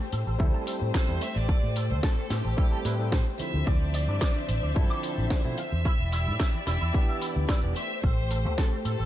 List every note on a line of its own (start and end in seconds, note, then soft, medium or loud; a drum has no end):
0.00 3.63 A3 medium
0.00 3.63 G4 medium
0.00 3.63 C5 medium
0.12 0.22 A2 medium
0.12 0.17 A4 loud
0.12 open hi-hat loud
0.12 cabasa medium
0.27 0.36 A1 medium
0.27 0.33 A4 medium
0.27 cabasa medium
0.38 0.49 D2 medium
0.38 1.04 G3 loud
0.38 1.05 C4 medium
0.38 1.05 E4 loud
0.38 1.06 A4 loud
0.38 0.47 E5 medium
0.38 kick loud
0.38 cabasa soft
0.54 0.61 A5 medium
0.67 0.74 A4 loud
0.67 open hi-hat loud
0.67 cabasa loud
0.81 0.90 A2 medium
0.81 cabasa medium
0.94 1.05 A4 medium
0.94 1.20 C5 loud
0.94 kick loud
0.94 snare loud
0.94 cabasa soft
1.08 1.17 E2 medium
1.08 1.22 G3 medium
1.08 1.22 C4 medium
1.08 1.22 E4 medium
1.08 1.22 A4 medium
1.21 1.26 C5 medium
1.21 1.36 E5 loud
1.21 open hi-hat loud
1.21 cabasa loud
1.36 1.48 A1 loud
1.36 1.90 D5 loud
1.36 cabasa medium
1.49 1.56 A4 medium
1.49 muted fingered electric bass stroke soft
1.49 kick loud
1.49 cabasa soft
1.63 1.92 A2 medium
1.76 1.83 A4 loud
1.76 open hi-hat loud
1.76 cabasa medium
1.89 1.99 D2 medium
1.89 1.97 A4 medium
1.89 2.03 C5 loud
1.89 cabasa medium
2.03 2.29 A4 loud
2.03 2.11 A5 loud
2.03 kick loud
2.03 snare loud
2.03 cabasa soft
2.17 2.21 A3 loud
2.30 2.40 A2 medium
2.30 3.12 G4 loud
2.30 2.35 A4 loud
2.30 snare medium
2.30 open hi-hat loud
2.30 cabasa medium
2.45 2.54 A1 medium
2.45 2.51 A4 medium
2.45 cabasa medium
2.57 2.82 G3 loud
2.57 2.82 C4 medium
2.57 2.83 E4 loud
2.57 2.83 A4 loud
2.57 2.65 E5 medium
2.57 kick loud
2.57 cabasa soft
2.72 2.79 A5 medium
2.85 3.19 A2 loud
2.85 2.94 G3 medium
2.85 2.94 C4 medium
2.85 2.94 E4 medium
2.85 2.92 A4 loud
2.85 2.95 B4 medium
2.85 open hi-hat loud
2.85 cabasa medium
2.99 3.12 G3 medium
2.99 3.13 C4 medium
2.99 3.13 E4 medium
2.99 3.13 A4 medium
2.99 cabasa medium
3.12 3.23 A4 medium
3.12 3.25 C5 loud
3.12 kick loud
3.12 snare loud
3.12 cabasa soft
3.38 4.72 D3 medium
3.38 4.73 F3 medium
3.38 4.73 C4 medium
3.38 4.73 E4 medium
3.38 3.44 C5 medium
3.38 3.65 E5 loud
3.38 muted fingered electric bass stroke soft
3.38 open hi-hat loud
3.38 cabasa medium
3.53 3.63 D2 medium
3.53 cabasa medium
3.67 4.08 D2 loud
3.67 5.83 D4 medium
3.67 5.83 C5 medium
3.67 3.74 D5 loud
3.67 4.76 D5 loud
3.67 5.83 E5 medium
3.67 kick loud
3.67 cabasa soft
3.94 4.01 D5 loud
3.94 open hi-hat loud
3.94 cabasa medium
4.08 4.17 G2 medium
4.08 4.15 D5 medium
4.08 cabasa medium
4.21 4.29 D6 loud
4.21 kick loud
4.21 snare loud
4.21 cabasa soft
4.36 4.40 D4 medium
4.49 4.59 A1 medium
4.49 4.53 D5 loud
4.49 open hi-hat loud
4.49 cabasa medium
4.63 4.72 D2 medium
4.63 4.69 D5 medium
4.63 cabasa soft
4.75 4.86 G2 medium
4.75 5.41 D3 loud
4.75 5.41 F3 medium
4.75 5.42 C4 medium
4.75 5.42 E4 loud
4.75 5.31 A4 loud
4.75 4.83 A5 medium
4.75 kick loud
4.75 cabasa soft
4.90 4.97 D6 medium
5.03 5.10 D5 loud
5.03 open hi-hat loud
5.03 cabasa medium
5.18 5.27 A1 medium
5.18 cabasa medium
5.30 5.56 C5 loud
5.30 5.41 D5 medium
5.30 kick loud
5.30 snare loud
5.30 cabasa soft
5.44 5.54 B2 medium
5.44 5.58 D3 medium
5.44 5.58 F3 medium
5.44 5.58 C4 medium
5.44 5.58 E4 medium
5.58 6.66 E5 loud
5.58 5.62 F5 medium
5.58 open hi-hat loud
5.58 cabasa medium
5.72 5.85 E2 loud
5.72 cabasa medium
5.85 7.74 E4 medium
5.85 5.92 E4 loud
5.85 9.05 G4 medium
5.85 7.74 D5 medium
5.85 muted fingered electric bass stroke soft
5.85 kick loud
5.85 cabasa soft
6.00 6.29 E1 medium
6.12 6.20 E4 loud
6.12 open hi-hat loud
6.12 cabasa medium
6.27 6.36 A2 medium
6.27 6.33 E4 medium
6.27 cabasa soft
6.39 6.47 E5 loud
6.39 kick loud
6.39 snare loud
6.39 cabasa soft
6.54 6.58 E3 loud
6.67 6.77 E1 medium
6.67 6.71 E4 loud
6.67 7.18 E5 loud
6.67 snare medium
6.67 open hi-hat loud
6.67 cabasa medium
6.81 6.90 E2 medium
6.81 6.88 E4 medium
6.81 cabasa soft
6.93 7.59 E3 loud
6.93 7.60 B3 medium
6.93 7.60 D4 loud
6.93 7.60 G4 loud
6.93 7.01 B4 medium
6.93 kick loud
6.93 cabasa soft
7.09 7.15 E5 medium
7.21 7.29 E4 loud
7.21 open hi-hat loud
7.21 cabasa medium
7.36 7.45 D2 loud
7.36 cabasa soft
7.48 7.60 E4 medium
7.48 7.74 D5 loud
7.48 kick loud
7.48 snare loud
7.48 cabasa soft
7.63 7.72 E1 medium
7.63 7.74 E3 medium
7.63 7.75 B3 medium
7.63 7.75 D4 medium
7.63 7.75 G4 medium
7.75 9.05 A3 medium
7.75 9.05 C5 medium
7.75 7.81 C5 medium
7.75 8.01 E5 loud
7.75 open hi-hat loud
7.75 cabasa medium
7.91 cabasa soft
8.03 8.45 A1 loud
8.03 8.11 A4 loud
8.03 8.54 C5 loud
8.03 kick loud
8.03 cabasa soft
8.31 8.38 A4 loud
8.31 open hi-hat loud
8.31 cabasa medium
8.45 8.54 D2 medium
8.45 8.52 A4 medium
8.45 cabasa soft
8.58 8.70 A4 medium
8.58 8.65 A5 loud
8.58 kick loud
8.58 snare loud
8.58 cabasa soft
8.72 8.76 A3 loud
8.85 8.95 A2 medium
8.85 8.89 A4 loud
8.85 9.05 A4 loud
8.85 open hi-hat loud
8.85 cabasa medium
8.99 9.05 A1 medium
8.99 9.05 A4 medium
8.99 cabasa soft